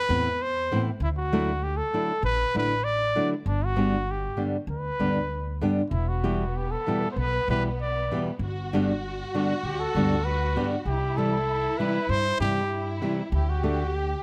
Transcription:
0.00 0.44 B4 loud
0.09 0.68 E2 medium
0.09 0.27 A2 medium
0.09 0.27 E3 medium
0.09 0.27 B3 medium
0.09 0.27 C4 medium
0.09 0.28 E4 medium
0.42 0.87 C5 loud
0.72 0.89 A2 medium
0.72 0.89 E3 medium
0.72 0.89 B3 medium
0.72 0.89 C4 medium
0.72 0.89 E4 medium
1.00 1.80 D2 medium
1.00 1.09 E4 medium
1.17 1.65 F#4 loud
1.32 1.50 D3 medium
1.32 1.50 F#3 loud
1.32 1.50 A3 loud
1.32 1.50 D4 medium
1.32 1.50 E4 loud
1.63 1.78 G4 medium
1.77 2.22 A4 loud
1.93 2.11 D3 medium
1.93 2.11 F#3 medium
1.93 2.11 A3 medium
1.93 2.11 D4 medium
1.93 2.11 E4 medium
2.23 2.43 A1 loud
2.23 2.53 B4 loud
2.54 3.14 A1 medium
2.54 2.72 D3 medium
2.54 2.73 F#3 medium
2.54 2.72 A3 medium
2.54 2.73 D4 medium
2.54 2.73 E4 medium
2.54 2.86 B4 loud
2.84 3.30 D5 loud
3.15 3.33 D3 medium
3.15 3.33 F#3 medium
3.15 3.34 A3 medium
3.15 3.34 D4 medium
3.15 3.34 E4 medium
3.46 4.26 G1 loud
3.46 3.67 D4 medium
3.65 4.12 F#4 loud
3.76 3.94 G2 medium
3.76 3.94 D3 medium
3.76 3.94 G3 medium
3.76 3.95 B3 medium
3.76 3.95 D4 medium
3.76 3.95 G4 medium
4.11 4.44 G4 medium
4.37 4.55 G2 medium
4.37 4.55 D3 medium
4.37 4.56 G3 medium
4.37 4.56 B3 medium
4.37 4.56 D4 medium
4.37 4.56 G4 medium
4.67 4.88 D2 medium
4.71 5.60 B4 medium
4.99 5.60 D2 medium
4.99 5.18 G2 medium
4.99 5.18 D3 medium
4.99 5.18 G3 medium
4.99 5.18 B3 medium
4.99 5.18 D4 medium
4.99 5.19 G4 medium
5.61 5.80 G2 medium
5.61 5.80 D3 medium
5.61 5.81 G3 medium
5.61 5.81 B3 medium
5.61 5.81 D4 medium
5.61 5.81 G4 loud
5.90 6.73 E1 medium
5.90 8.37 B3 medium
5.90 6.10 E4 medium
6.08 6.58 F#4 medium
6.24 6.43 E2 medium
6.24 6.43 B2 medium
6.24 6.43 E3 medium
6.24 6.43 G3 medium
6.24 6.43 E4 medium
6.24 6.43 G4 medium
6.57 6.73 G4 medium
6.71 7.11 A4 medium
6.87 7.05 E2 medium
6.87 7.06 B2 medium
6.87 7.06 E3 medium
6.87 7.06 G3 medium
6.87 7.06 E4 medium
6.87 7.06 G4 medium
7.11 7.20 C5 medium
7.16 7.37 B1 medium
7.16 7.50 B4 loud
7.48 8.08 B1 medium
7.48 7.67 E2 medium
7.48 7.68 B2 medium
7.48 7.68 E3 medium
7.48 7.68 G3 medium
7.48 7.68 E4 medium
7.48 7.68 G4 medium
7.48 7.64 B4 medium
7.82 8.24 D5 medium
8.11 8.29 E2 medium
8.11 8.30 B2 medium
8.11 8.30 E3 medium
8.11 8.29 G3 medium
8.11 8.30 E4 medium
8.11 8.30 G4 medium
8.39 9.20 G1 medium
8.39 10.87 F#4 loud
8.73 8.91 G2 medium
8.73 8.91 D3 medium
8.73 8.91 G3 medium
8.73 8.91 B3 medium
8.73 8.92 D4 medium
8.73 8.92 G4 loud
9.34 9.52 G2 medium
9.34 9.52 D3 medium
9.34 9.52 G3 medium
9.34 9.53 B3 medium
9.34 9.53 D4 medium
9.34 9.67 F#4 medium
9.34 9.53 G4 medium
9.63 9.84 D2 medium
9.63 9.81 G4 medium
9.80 10.26 A4 loud
9.95 10.54 D2 medium
9.95 10.14 G2 medium
9.95 10.14 D3 medium
9.95 10.14 G3 medium
9.95 10.14 B3 medium
9.95 10.14 D4 medium
9.95 10.15 G4 medium
10.25 10.72 B4 medium
10.56 10.74 G2 medium
10.56 10.74 D3 medium
10.56 10.75 G3 medium
10.56 10.75 B3 medium
10.56 10.75 D4 medium
10.56 10.75 G4 loud
10.86 11.66 C2 medium
10.86 12.72 E4 loud
10.86 11.19 G4 medium
11.16 11.35 C3 medium
11.16 11.36 E3 medium
11.16 11.36 G3 loud
11.16 11.36 E4 medium
11.16 11.36 G4 medium
11.16 11.80 A4 loud
11.78 11.97 C3 medium
11.78 11.98 E3 medium
11.78 11.98 G3 medium
11.78 11.98 E4 medium
11.78 11.98 G4 medium
11.78 12.11 B4 medium
12.09 12.30 G2 medium
12.09 12.40 C5 loud
12.40 13.00 G2 medium
12.40 12.59 C3 medium
12.40 12.59 E3 medium
12.40 12.60 G3 medium
12.40 12.60 E4 medium
12.40 12.99 G4 loud
12.40 12.60 G4 medium
12.73 13.30 E4 medium
13.02 13.20 C3 medium
13.02 13.20 E3 medium
13.02 13.21 G3 medium
13.02 13.21 E4 medium
13.02 13.21 G4 medium
13.32 14.13 D2 loud
13.32 13.51 E4 medium
13.32 14.23 G4 loud
13.50 13.96 F#4 medium
13.63 13.82 D3 medium
13.63 13.82 A3 medium
13.63 13.82 D4 medium
13.63 13.82 G4 medium
13.95 14.23 G4 medium

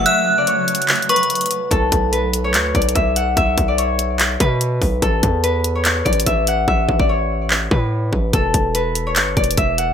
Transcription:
0.00 1.68 C#3 medium
0.00 1.67 F#3 medium
0.00 1.68 F#3 medium
0.00 1.68 A3 medium
0.00 1.67 F#4 medium
0.00 0.60 A4 loud
0.00 1.68 A4 medium
0.00 0.86 B4 medium
0.00 1.68 C#5 medium
0.00 0.38 D5 medium
0.00 1.46 F#5 medium
0.00 1.67 F#5 medium
0.06 1.78 E5 loud
0.06 1.05 F#6 loud
0.06 closed hi-hat medium
0.38 0.54 D5 medium
0.47 2.39 C#5 medium
0.47 closed hi-hat medium
0.68 closed hi-hat medium
0.75 closed hi-hat medium
0.82 closed hi-hat medium
0.89 clap loud
0.89 closed hi-hat medium
0.96 closed hi-hat soft
1.02 closed hi-hat soft
1.09 2.12 B4 medium
1.09 1.29 C#6 medium
1.09 closed hi-hat medium
1.16 closed hi-hat medium
1.23 closed hi-hat medium
1.30 closed hi-hat medium
1.35 closed hi-hat medium
1.41 closed hi-hat medium
1.46 closed hi-hat medium
1.51 closed hi-hat medium
1.71 1.91 B1 loud
1.71 3.90 A4 loud
1.71 kick loud
1.71 closed hi-hat medium
1.92 2.56 B1 loud
1.92 kick loud
1.92 closed hi-hat medium
2.12 4.17 B4 medium
2.12 closed hi-hat medium
2.33 closed hi-hat medium
2.44 2.81 C#5 medium
2.54 2.74 D2 loud
2.54 clap loud
2.54 closed hi-hat medium
2.75 2.95 B1 loud
2.75 3.68 D5 medium
2.75 kick loud
2.75 closed hi-hat soft
2.82 closed hi-hat medium
2.89 closed hi-hat medium
2.95 3.35 B1 loud
2.95 3.36 E5 medium
2.95 kick loud
2.95 closed hi-hat medium
3.16 4.77 F#5 medium
3.16 closed hi-hat medium
3.37 3.57 B1 loud
3.37 5.09 E5 loud
3.37 kick loud
3.37 closed hi-hat medium
3.58 4.37 B1 loud
3.58 kick loud
3.58 closed hi-hat medium
3.68 3.84 D5 medium
3.78 5.69 C#5 medium
3.78 closed hi-hat medium
3.99 closed hi-hat medium
4.20 clap loud
4.20 closed hi-hat medium
4.40 4.80 B2 loud
4.40 5.43 B4 medium
4.40 kick loud
4.40 closed hi-hat medium
4.61 closed hi-hat medium
4.82 5.02 B1 loud
4.82 kick medium
4.82 open hi-hat medium
5.02 5.22 A1 loud
5.02 7.22 A4 loud
5.02 kick loud
5.02 closed hi-hat medium
5.23 6.03 E2 loud
5.23 kick loud
5.23 closed hi-hat medium
5.44 7.49 B4 medium
5.44 closed hi-hat medium
5.64 closed hi-hat medium
5.75 6.11 C#5 medium
5.85 clap loud
5.85 closed hi-hat medium
6.05 6.26 A1 loud
6.05 6.99 D5 medium
6.05 kick loud
6.05 closed hi-hat soft
6.13 closed hi-hat medium
6.20 closed hi-hat medium
6.26 6.66 A1 loud
6.26 6.67 E5 medium
6.26 kick loud
6.26 closed hi-hat medium
6.47 8.09 F#5 medium
6.47 closed hi-hat medium
6.68 6.88 A1 loud
6.68 8.40 E5 loud
6.68 kick loud
6.89 7.68 A1 loud
6.89 kick loud
7.00 7.15 D5 medium
7.00 kick loud
7.09 9.00 C#5 medium
7.50 clap loud
7.71 8.11 A2 loud
7.71 8.75 B4 medium
7.71 kick loud
8.13 8.33 A1 loud
8.13 kick medium
8.33 8.53 E1 loud
8.33 9.94 A4 loud
8.33 kick loud
8.33 closed hi-hat medium
8.54 9.18 E1 loud
8.54 kick loud
8.54 closed hi-hat medium
8.75 9.94 B4 medium
8.75 closed hi-hat medium
8.95 closed hi-hat medium
9.07 9.43 C#5 medium
9.16 9.36 G1 loud
9.16 clap loud
9.16 closed hi-hat medium
9.37 9.57 E1 loud
9.37 9.94 D5 medium
9.37 kick loud
9.37 closed hi-hat soft
9.44 closed hi-hat medium
9.51 closed hi-hat medium
9.57 9.94 E1 loud
9.57 9.94 E5 medium
9.57 kick loud
9.57 closed hi-hat medium
9.78 9.94 F#5 medium
9.78 closed hi-hat medium

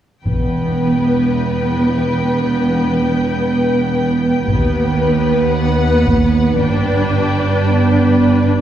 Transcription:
0.24 4.44 E1 soft
0.24 4.45 E2 soft
0.24 4.45 B3 soft
0.24 4.45 B4 soft
0.24 5.50 G5 soft
0.24 taiko soft
4.48 6.56 D#2 medium
4.48 6.56 B3 medium
4.48 8.48 B4 soft
4.48 taiko soft
5.53 6.60 F#5 soft
6.06 taiko soft
6.59 8.48 G1 medium
6.59 8.48 G2 soft
6.59 8.48 D4 medium
6.59 8.48 G5 medium
7.65 8.32 B3 medium
8.37 8.61 D4 soft

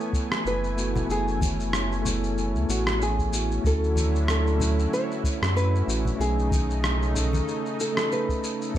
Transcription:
0.00 3.60 E3 medium
0.00 0.75 A3 medium
0.00 3.60 A3 medium
0.00 0.76 B3 medium
0.00 1.06 B3 medium
0.00 0.78 E4 medium
0.00 0.75 A4 medium
0.00 0.47 C#5 loud
0.00 3.60 G#5 medium
0.00 3.66 G#5 medium
0.00 shaker soft
0.13 kick medium
0.13 shaker medium
0.32 cross-stick medium
0.32 shaker soft
0.45 1.04 F#1 medium
0.45 1.06 B4 medium
0.45 shaker soft
0.64 shaker soft
0.75 1.04 A3 medium
0.75 1.05 B3 medium
0.75 1.06 E4 medium
0.75 1.07 F#4 medium
0.75 shaker medium
0.96 low conga medium
0.96 shaker soft
1.06 2.56 F#1 loud
1.06 2.00 A3 medium
1.06 2.01 B3 medium
1.06 6.16 C#4 medium
1.10 2.02 E4 medium
1.10 2.02 G#4 medium
1.10 2.03 G#4 medium
1.10 shaker soft
1.28 shaker soft
1.41 kick medium
1.41 high conga medium
1.41 shaker medium
1.60 shaker soft
1.73 cross-stick medium
1.73 shaker soft
1.92 shaker soft
2.02 3.28 A3 medium
2.02 3.29 B3 medium
2.02 low conga medium
2.06 3.30 E4 medium
2.06 3.31 A4 medium
2.06 shaker medium
2.24 shaker soft
2.38 shaker soft
2.55 2.66 C#2 medium
2.55 shaker soft
2.69 3.60 A1 medium
2.69 3.02 F#4 medium
2.69 shaker medium
2.87 cross-stick medium
2.87 shaker soft
3.02 3.61 G#4 medium
3.02 shaker soft
3.19 kick medium
3.19 shaker soft
3.31 3.60 A3 medium
3.31 3.61 B3 medium
3.31 3.62 E4 medium
3.31 3.62 F#4 medium
3.31 shaker medium
3.51 shaker soft
3.61 4.87 D2 loud
3.61 6.17 D3 medium
3.61 6.17 F#3 medium
3.61 4.55 A3 medium
3.61 4.57 C#4 medium
3.61 6.17 E4 medium
3.61 kick loud
3.65 4.58 E4 medium
3.65 4.59 F#4 medium
3.65 4.29 A4 medium
3.65 shaker soft
3.84 shaker soft
3.96 high conga medium
3.96 shaker medium
4.15 shaker soft
4.28 4.93 A4 medium
4.28 cross-stick medium
4.28 shaker soft
4.47 shaker soft
4.57 5.83 A3 medium
4.57 5.84 C#4 medium
4.57 low conga medium
4.61 5.85 E4 medium
4.61 5.86 A4 medium
4.61 shaker medium
4.79 shaker soft
4.93 5.56 C#5 loud
4.93 shaker soft
5.12 shaker soft
5.24 kick loud
5.24 shaker medium
5.42 5.83 F#2 loud
5.42 cross-stick medium
5.42 shaker soft
5.57 6.20 B4 medium
5.57 shaker soft
5.76 shaker soft
5.86 6.14 A1 medium
5.86 6.15 A3 medium
5.86 6.16 C#4 medium
5.86 6.17 E4 medium
5.86 6.17 F#4 medium
5.86 shaker medium
6.05 low conga medium
6.05 shaker soft
6.16 7.42 B1 loud
6.16 8.73 C#3 medium
6.16 7.10 A3 medium
6.16 8.78 A3 medium
6.16 7.11 C#4 medium
6.16 8.72 D#4 medium
6.21 7.13 D#4 medium
6.21 7.12 G#4 medium
6.21 7.14 G#4 medium
6.21 shaker soft
6.39 shaker soft
6.51 kick loud
6.51 high conga medium
6.51 shaker medium
6.71 shaker soft
6.84 cross-stick medium
6.84 shaker soft
7.03 shaker soft
7.11 7.92 A3 medium
7.11 7.93 C#4 medium
7.16 7.94 D#4 medium
7.16 7.95 A4 loud
7.16 low conga medium
7.16 shaker medium
7.33 high conga medium
7.33 shaker soft
7.48 shaker soft
7.66 shaker soft
7.80 8.12 A4 medium
7.80 shaker medium
7.93 8.69 A3 medium
7.93 8.71 C#4 medium
7.97 8.72 D#4 medium
7.97 8.73 A4 medium
7.97 cross-stick medium
7.97 shaker soft
8.12 8.76 B4 medium
8.12 shaker soft
8.29 kick medium
8.29 shaker soft
8.44 shaker medium
8.62 shaker soft
8.71 8.78 F#1 medium
8.71 8.78 E3 medium
8.71 8.78 A3 medium
8.71 8.78 B3 medium
8.71 8.78 G#5 medium
8.71 kick loud

